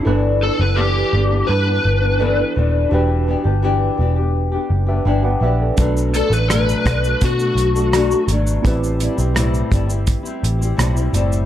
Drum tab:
HH |----------------|----------------|x-x-x-x-x-x-x-x-|x-x-x-x-x-x-x-x-|
SH |----------------|----------------|xxxxxxxxxxxxxxxx|xxxxxxxxxxxxxxxx|
SD |----------------|----------------|----r-r-----r---|----r-------r---|
BD |----------------|----------------|o-----o-o-------|o-----o-o-------|